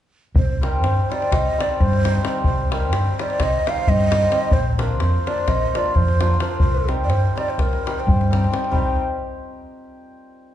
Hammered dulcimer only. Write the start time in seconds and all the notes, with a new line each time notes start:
0.61 G3 C4 D#4 G4
1.10 G3 C4 D#4 G4
1.58 G3 C4 D#4 G4
2.03 G3 C4 D#4 G4
2.23 G3 C4 D#4 G4
2.71 G3 C4 D#4 G4
3.19 G3 C4 D#4 G4
3.67 G3 C4 D#4 G4
4.11 G3 C4 D#4 G4
4.30 G3 C4 D#4 G4
4.78 F3 A#3 D4 F4
5.26 F3 A#3 D4 F4
5.74 F3 A#3 D4 F4
6.20 F3 A#3 D4 F4
6.40 F3 A#3 D4 F4
6.87 G3 C4 D#4 G4
7.35 G3 C4 D#4 G4
7.86 G3 C4 D#4 G4
8.30 G3 C4 D#4 G4
8.50 G3 C4 D#4 G4
8.71 G3 C4 D#4 G4